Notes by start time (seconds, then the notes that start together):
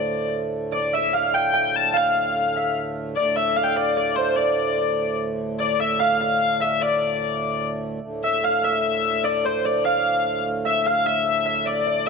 Already playing: D2 A2 C5 D5 F5
0.72 D5
0.93 E5
1.13 F5
1.34 G5
1.54 G5
1.76 A5
1.93 F5
2.56 E5
3.16 D2 A2 D5
3.36 E5
3.56 F5
3.63 F5 G5
3.76 D5
3.97 D5
4.16 C5
4.36 D5
5.60 D5
5.80 E5
6.00 F5
6.20 F5
6.60 E5
6.81 D5
8.01 D2 A2
8.24 E5
8.44 F5
8.64 E5
9.24 D5
9.44 C5
9.65 D5
9.85 F5
10.65 E5
10.86 F5
11.06 E5
11.46 E5
11.66 D5
11.87 D5